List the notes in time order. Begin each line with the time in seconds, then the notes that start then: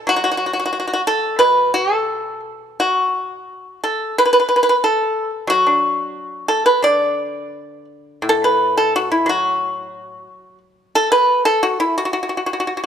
Already playing: B2
0.07 F#3 F#4
0.16 F#4
0.24 F#4
0.31 F#4
0.37 F#4
0.46 F#4
0.53 F#4
0.60 F#4
0.66 F#4
0.73 F#4
0.80 F#4
0.87 F#4
0.93 F#4
1.07 A4
1.39 B2 B4
1.74 F#4
1.95 A4
2.80 F#4
3.84 A4
4.18 B4
4.25 B4
4.33 B4
4.40 B4
4.49 B4
4.56 B4
4.63 B4
4.69 B4
4.84 A4
5.47 F#3 F#4
5.67 D4
6.48 A4
6.66 B4
6.82 D3 D5
8.22 A2
8.29 A4
8.44 B4
8.77 A4
8.96 F#4
9.12 E4
9.26 F#3 F#4
10.95 A4
11.12 B4
11.45 A4
11.63 F#4
11.80 E4
11.98 F#4
12.05 F#4
12.13 F#4
12.23 F#4
12.29 F#4
12.37 F#4
12.46 F#4
12.53 F#4
12.60 F#4
12.67 F#4
12.77 F#4